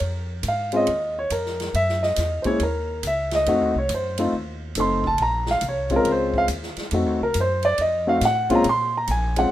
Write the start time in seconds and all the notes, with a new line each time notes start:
0.00 F2, ride
0.43 G#2, hi-hat pedal, ride
0.48 F5
0.72 G#3 C4 C#4 F4, ride
0.76 D#5
0.87 D#2, ride
1.19 C#5
1.30 F2 A#4, hi-hat pedal, ride
1.46 snare
1.60 snare, ride
1.74 F#2 E5, ride
1.89 snare
2.03 D#5, snare
2.16 E2, snare, hi-hat pedal, ride
2.42 G#3 A#3 C#4 C5, muted upright bass stroke, kick, ride
2.47 E4 C#5
2.60 D#2 A#4, ride
3.03 C#2, hi-hat pedal, ride
3.07 E5
3.31 D#5, snare, ride
3.46 F2 A3 C4 D#4 F#4, ride
3.61 D#2
3.75 C2 C#5
3.89 F#2, hi-hat pedal, ride
3.94 C5
4.18 A3 C4 D#4 F4, ride
4.33 D#2
4.75 F#1 A3 C4 D#4 A4, hi-hat pedal, ride
4.80 C6
5.04 A5, kick
5.18 A#1, ride
5.22 A#5
5.46 snare
5.51 F5
5.61 C2, hi-hat pedal, ride
5.68 C#5
5.90 G#3 C4 C#4 F4, kick, ride
5.96 A#4
6.05 C#2, ride
6.11 C5
6.34 kick
6.38 F5
6.48 D#2, hi-hat pedal, ride
6.63 snare
6.77 muted upright bass stroke, snare, ride
6.91 F2 A3 C4 D#4 F#4, ride
7.06 D#2
7.21 C2 A#4
7.34 F#2, hi-hat pedal, ride
7.40 C5
7.63 D5, ride
7.78 F2 D#5, ride
8.07 A3 C4 D#4 F#4 F5
8.21 A2, snare, hi-hat pedal, ride
8.25 F#5
8.50 A#2 G#3 C4 C#4 F4, kick, ride
8.55 A#5
8.64 A#2, ride
8.69 C6
8.97 A#5
9.07 A#1 G#5, hi-hat pedal, ride
9.36 G#3 C4 C#4 F4 F#5, ride